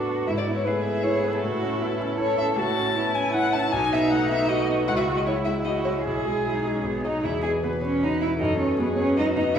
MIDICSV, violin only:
0, 0, Header, 1, 2, 480
1, 0, Start_track
1, 0, Key_signature, 4, "major"
1, 0, Tempo, 382897
1, 359, Time_signature, 3, 2, 24, 8
1, 6116, Tempo, 393959
1, 9476, Tempo, 382409
1, 11927, End_track
2, 0, Start_track
2, 0, Title_t, "Violin"
2, 0, Program_c, 0, 40
2, 0, Note_on_c, 0, 69, 64
2, 330, Note_off_c, 0, 69, 0
2, 337, Note_on_c, 0, 76, 69
2, 390, Note_off_c, 0, 76, 0
2, 467, Note_on_c, 0, 74, 63
2, 566, Note_off_c, 0, 74, 0
2, 705, Note_on_c, 0, 73, 52
2, 810, Note_on_c, 0, 71, 63
2, 829, Note_off_c, 0, 73, 0
2, 1046, Note_off_c, 0, 71, 0
2, 1053, Note_on_c, 0, 76, 68
2, 1295, Note_on_c, 0, 73, 85
2, 1314, Note_off_c, 0, 76, 0
2, 1552, Note_on_c, 0, 71, 53
2, 1571, Note_off_c, 0, 73, 0
2, 1650, Note_off_c, 0, 71, 0
2, 1658, Note_on_c, 0, 69, 69
2, 2722, Note_off_c, 0, 69, 0
2, 2765, Note_on_c, 0, 73, 81
2, 2975, Note_off_c, 0, 73, 0
2, 2983, Note_on_c, 0, 76, 75
2, 3081, Note_off_c, 0, 76, 0
2, 3218, Note_on_c, 0, 81, 87
2, 3945, Note_on_c, 0, 80, 83
2, 3964, Note_off_c, 0, 81, 0
2, 4186, Note_off_c, 0, 80, 0
2, 4194, Note_on_c, 0, 78, 96
2, 4423, Note_on_c, 0, 81, 87
2, 4442, Note_off_c, 0, 78, 0
2, 4662, Note_on_c, 0, 80, 100
2, 4681, Note_off_c, 0, 81, 0
2, 4924, Note_on_c, 0, 76, 81
2, 4943, Note_off_c, 0, 80, 0
2, 5138, Note_on_c, 0, 78, 80
2, 5157, Note_off_c, 0, 76, 0
2, 5375, Note_off_c, 0, 78, 0
2, 5382, Note_on_c, 0, 76, 77
2, 5621, Note_on_c, 0, 75, 78
2, 5640, Note_off_c, 0, 76, 0
2, 5868, Note_off_c, 0, 75, 0
2, 6115, Note_on_c, 0, 78, 90
2, 6163, Note_off_c, 0, 78, 0
2, 6222, Note_on_c, 0, 76, 69
2, 6320, Note_off_c, 0, 76, 0
2, 6470, Note_on_c, 0, 75, 66
2, 6518, Note_off_c, 0, 75, 0
2, 6587, Note_on_c, 0, 73, 73
2, 6683, Note_off_c, 0, 73, 0
2, 6807, Note_on_c, 0, 76, 68
2, 6904, Note_off_c, 0, 76, 0
2, 7049, Note_on_c, 0, 75, 75
2, 7146, Note_off_c, 0, 75, 0
2, 7290, Note_on_c, 0, 73, 61
2, 7388, Note_off_c, 0, 73, 0
2, 7543, Note_on_c, 0, 68, 60
2, 8496, Note_off_c, 0, 68, 0
2, 8754, Note_on_c, 0, 75, 48
2, 8852, Note_off_c, 0, 75, 0
2, 8996, Note_on_c, 0, 76, 53
2, 9092, Note_off_c, 0, 76, 0
2, 9220, Note_on_c, 0, 80, 47
2, 9317, Note_off_c, 0, 80, 0
2, 9460, Note_on_c, 0, 71, 41
2, 9690, Note_on_c, 0, 73, 46
2, 9708, Note_off_c, 0, 71, 0
2, 9935, Note_off_c, 0, 73, 0
2, 9943, Note_on_c, 0, 75, 55
2, 10043, Note_off_c, 0, 75, 0
2, 10197, Note_on_c, 0, 76, 47
2, 10294, Note_off_c, 0, 76, 0
2, 10412, Note_on_c, 0, 75, 59
2, 10652, Note_off_c, 0, 75, 0
2, 10659, Note_on_c, 0, 73, 52
2, 10906, Note_off_c, 0, 73, 0
2, 10921, Note_on_c, 0, 71, 52
2, 11132, Note_off_c, 0, 71, 0
2, 11140, Note_on_c, 0, 73, 58
2, 11240, Note_off_c, 0, 73, 0
2, 11399, Note_on_c, 0, 75, 73
2, 11494, Note_off_c, 0, 75, 0
2, 11623, Note_on_c, 0, 75, 69
2, 11865, Note_on_c, 0, 76, 78
2, 11884, Note_off_c, 0, 75, 0
2, 11927, Note_off_c, 0, 76, 0
2, 11927, End_track
0, 0, End_of_file